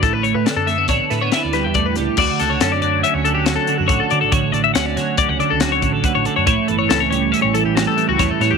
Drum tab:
CC |----------|x---------|----------|----------|
HH |xxxxxxxxxx|-xxxxxxxxx|xxxxxxxxxx|xxxxxxxxxx|
SD |--oooooo-o|-oo---o---|--oo--o---|--o---o-oo|
BD |o---o---o-|o-------o-|o---o--oo-|o-------o-|